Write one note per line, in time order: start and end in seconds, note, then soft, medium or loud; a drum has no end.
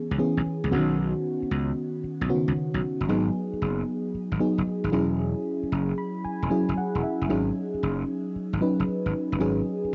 0.00 0.18 E3 medium
0.00 0.19 B3 medium
0.00 0.19 C#4 medium
0.00 0.20 G#4 medium
0.11 0.18 C#2 medium
0.18 0.71 E3 medium
0.18 0.70 B3 medium
0.18 0.70 C#4 medium
0.18 0.72 G#4 medium
0.37 0.44 B1 loud
0.64 0.70 C#2 medium
0.71 1.12 B1 loud
0.71 0.80 D3 medium
0.71 1.70 B3 medium
0.71 1.70 C#4 medium
0.71 1.70 F#4 loud
0.77 1.73 D#3 medium
1.43 muted slap bass stroke soft
1.51 1.71 C#2 medium
2.04 muted slap bass stroke soft
2.21 2.28 B1 medium
2.29 2.38 C#3 medium
2.29 3.03 B3 medium
2.29 3.03 C#4 medium
2.29 3.04 F#4 medium
2.35 3.06 D#3 medium
2.48 2.54 C#2 medium
2.57 muted slap bass stroke soft
2.74 2.81 B1 medium
3.01 3.07 F#1 loud
3.08 3.29 G#1 loud
3.08 4.07 F#3 medium
3.08 4.07 B3 medium
3.08 4.07 D#4 medium
3.08 4.07 G#4 medium
3.53 muted slap bass stroke soft
3.62 3.82 F#1 medium
4.15 muted slap bass stroke soft
4.32 4.38 G#1 medium
4.40 4.91 F#3 medium
4.40 4.93 B3 medium
4.40 4.93 D#4 medium
4.40 4.92 G#4 medium
4.58 4.65 F#1 medium
4.84 4.91 G#1 medium
4.92 5.33 E1 loud
4.92 5.91 F#3 medium
4.92 5.91 C#4 medium
4.92 5.91 E4 medium
4.92 5.91 G#4 medium
5.63 muted slap bass stroke soft
5.72 5.92 F#1 loud
5.98 6.22 B5 medium
6.24 6.49 G#5 medium
6.24 muted slap bass stroke soft
6.42 6.49 E1 medium
6.50 7.24 F#3 medium
6.50 7.24 C#4 medium
6.50 7.25 E4 medium
6.50 7.25 G#4 loud
6.50 6.75 G#5 medium
6.69 6.75 F#1 medium
6.77 7.02 F#5 medium
6.77 muted slap bass stroke soft
6.95 7.02 E1 medium
7.03 7.28 E5 medium
7.21 7.28 F#1 loud
7.29 7.50 G#1 loud
7.29 8.28 F#3 medium
7.29 8.28 C#4 medium
7.29 8.28 D#4 medium
7.29 8.28 G#4 medium
7.74 muted slap bass stroke soft
7.83 8.03 F#1 medium
8.36 muted slap bass stroke soft
8.53 8.59 G#1 medium
8.61 9.35 F#3 medium
8.61 9.35 C#4 medium
8.61 9.35 D#4 medium
8.61 9.35 B4 medium
8.80 8.86 F#1 medium
8.88 muted slap bass stroke soft
9.06 9.12 G#1 medium
9.32 9.39 F#1 loud
9.40 9.61 G#1 loud
9.40 9.95 F#3 medium
9.40 9.95 C#4 medium
9.40 9.95 D#4 medium
9.40 9.95 G#4 medium
9.84 muted slap bass stroke soft